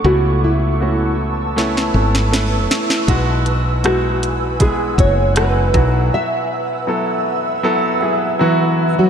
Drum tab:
HH |----------------|x-x-x-x-x-x-x-x-|----------------|
SD |--------oo-oo-oo|----r-------r---|----------------|
BD |----------------|o-------o-o---o-|----------------|